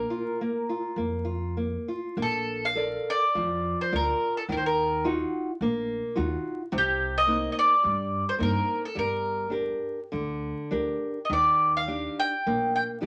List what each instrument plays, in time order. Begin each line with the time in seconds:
Already playing: nylon-string guitar A#3, mandolin A#4
0.10 nylon-string guitar F4
0.41 nylon-string guitar A#3
0.69 nylon-string guitar F4
0.96 upright bass F2, nylon-string guitar A#3
1.25 nylon-string guitar F4
1.57 nylon-string guitar A#3
1.88 nylon-string guitar F4
2.17 upright bass A#1, nylon-string guitar A#3
2.22 mandolin A4
2.65 mandolin F5
2.75 nylon-string guitar A4 A#4 D5
3.10 mandolin D5
3.35 upright bass F2, nylon-string guitar F3
3.81 mandolin C5
3.93 upright bass D2, nylon-string guitar F4 A#4 D5, mandolin A#4
4.37 mandolin A4
4.49 upright bass D#2, nylon-string guitar D#3, mandolin A#4
4.57 mandolin C5
4.66 mandolin A#4
5.04 nylon-string guitar D#4 F4 F#4
5.61 upright bass A#1, nylon-string guitar A#3
6.15 upright bass D#2, nylon-string guitar D#4 F4 F#4
6.72 upright bass C2, nylon-string guitar C3
6.78 mandolin G4
7.18 mandolin D#5
7.27 nylon-string guitar A#3 C4 D#4
7.52 mandolin D#5
7.59 mandolin D5
7.83 upright bass G2, nylon-string guitar G3
8.29 mandolin C5
8.38 upright bass G2, nylon-string guitar A#3 C4 D#4
8.43 mandolin A#4
8.85 mandolin A4
8.95 upright bass G1, nylon-string guitar G3, mandolin A#4
9.50 nylon-string guitar D4 G4 A#4
10.12 upright bass D2, nylon-string guitar D3
10.71 upright bass D2, nylon-string guitar D4 G4 A#4
11.25 mandolin D#5
11.30 upright bass D#2, nylon-string guitar D#3, mandolin D5
11.77 mandolin F5
11.87 nylon-string guitar D4 D#4 G4
12.19 mandolin G5
12.46 upright bass A#1, nylon-string guitar A#3
12.76 mandolin G5
13.00 upright bass C#2, nylon-string guitar D4 D#4 G4